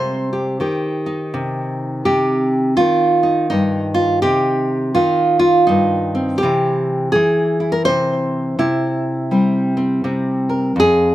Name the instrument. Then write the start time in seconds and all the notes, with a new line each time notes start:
nylon-string guitar
Already playing: C3 G3 C5
0.33 G4
0.60 D#3 G4
1.06 D#4
1.34 C3
2.05 C3 G4
2.77 D#3 F4
3.23 D#4
3.50 G2 D#4
3.94 F4
4.22 C3 G4
4.95 D#3 F4
5.39 F4
5.67 G2 D#4
6.15 C4
6.38 G4
6.43 C3 E3 E4
7.12 E3 G#4
7.60 E4
7.72 A#4
7.85 C3 C5
8.59 C3 E4
9.31 G3 C4
9.77 C4
10.04 C3 C4
10.49 A#4
10.76 F2 G#4